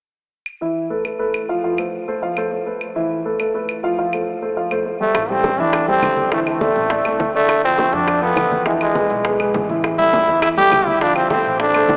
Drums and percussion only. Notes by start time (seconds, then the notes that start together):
0.46 claves
1.05 claves
1.34 claves
1.78 claves
2.37 claves
2.81 claves
3.40 claves
3.69 claves
4.13 claves
4.71 claves
5.15 high bongo, high conga, claves
5.29 high conga
5.44 high bongo, high conga
5.58 high bongo, high conga
5.73 high bongo, high conga, claves
5.88 high bongo, high conga
6.02 high bongo, low bongo, high conga, claves
6.17 high bongo, high conga
6.32 high bongo, high conga
6.47 high conga, claves
6.61 high bongo, high conga
6.76 high bongo
6.90 high bongo, high conga
7.05 high bongo, high conga, claves
7.20 high bongo, low bongo, high conga
7.35 high bongo
7.49 high bongo, high conga, claves
7.64 high conga
7.78 high bongo, high conga
7.93 high bongo, high conga
8.08 high bongo, high conga, claves
8.22 high bongo, high conga
8.37 high bongo, low bongo, high conga, claves
8.51 high bongo, high conga
8.66 high bongo, high conga
8.81 high conga, claves
8.95 high bongo, high conga
9.11 high bongo
9.25 high bongo, high conga
9.40 high bongo, high conga, claves
9.54 high bongo, low bongo, high conga
9.69 high bongo, high conga
9.84 high bongo, high conga, claves
9.99 high conga
10.13 high bongo, high conga
10.28 high bongo, high conga
10.42 high bongo, high conga, claves
10.57 high bongo, high conga
10.72 high bongo, low bongo, high conga, claves
10.87 high bongo, high conga
11.01 high bongo, high conga
11.16 high conga, claves
11.30 high bongo, high conga
11.45 high bongo
11.60 high bongo, high conga
11.74 high bongo, high conga, claves
11.89 high bongo, low bongo, high conga